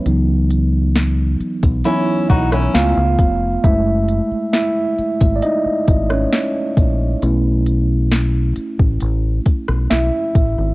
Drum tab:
HH |x-x-x-xxx-x-x-x-|x-x-x-xxx-x-x-x-|x-x-x-x-x-x-x-x-|
SD |----o------ro---|----o------ro---|----o------ro---|
BD |-------o--o---o-|o------o--o---o-|-------o--o---o-|